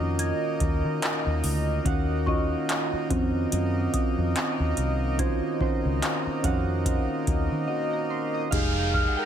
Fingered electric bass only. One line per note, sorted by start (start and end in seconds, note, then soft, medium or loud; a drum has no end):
0.00 0.31 F2 medium
0.61 0.80 D#2 loud
0.85 0.99 D#3 loud
1.26 1.41 D#2 medium
1.44 1.78 D2 loud
1.86 2.54 D#2 loud
2.93 muted fingered electric bass stroke soft
3.11 3.45 F2 medium
3.53 3.87 F#2 loud
4.18 4.33 F2 loud
4.60 4.74 D#2 medium
4.77 5.31 C2 medium
5.61 muted fingered electric bass stroke soft
5.85 5.99 C#2 medium
6.27 muted fingered electric bass stroke soft
6.44 6.98 F2 medium
7.27 7.47 D#2 loud
7.52 7.66 D#3 loud
8.52 9.06 F1 loud